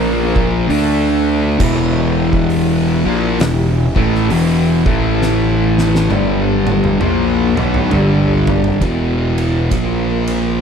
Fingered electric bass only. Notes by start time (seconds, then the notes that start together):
Already playing: A#1
0.69 D2
1.60 E1
3.06 A#1
3.40 E1
3.96 A1
4.30 E1
4.86 A1
6.10 G1
7.01 A#1
7.57 B1
7.91 G1
8.81 E1
9.71 A#1